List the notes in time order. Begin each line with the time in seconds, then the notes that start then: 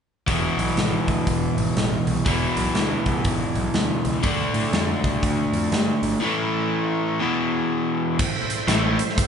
0.27 E1 E2 B2 E3, kick, open hi-hat
0.58 B1, open hi-hat
0.77 G#1, snare, open hi-hat
1.08 D2, kick, open hi-hat
1.27 E1, kick, open hi-hat
1.57 G#1, open hi-hat
1.76 A1, snare, open hi-hat
2.07 C2, open hi-hat
2.25 E1 E2 B2 E3, kick, open hi-hat
2.56 B1, open hi-hat
2.75 D2, snare, open hi-hat
3.06 C2, kick, open hi-hat
3.25 G#1, kick, open hi-hat
3.55 B1, open hi-hat
3.74 D2, snare, open hi-hat
4.05 C#2, open hi-hat
4.23 D2 D3 A3 D4, kick, open hi-hat
4.54 A2, open hi-hat
4.73 F2, snare, open hi-hat
5.04 C2, kick, open hi-hat
5.23 D2, kick, open hi-hat
5.53 F2, open hi-hat
5.72 G2, snare, open hi-hat
6.03 G1, open hi-hat
6.20 A2 E3 A3
7.19 E2 B2 E3
8.19 C4 E4 A4 C5, kick, crash
8.50 closed hi-hat
8.68 A1 A2 E3 A3, snare, closed hi-hat
8.99 closed hi-hat
9.09 snare
9.18 kick, closed hi-hat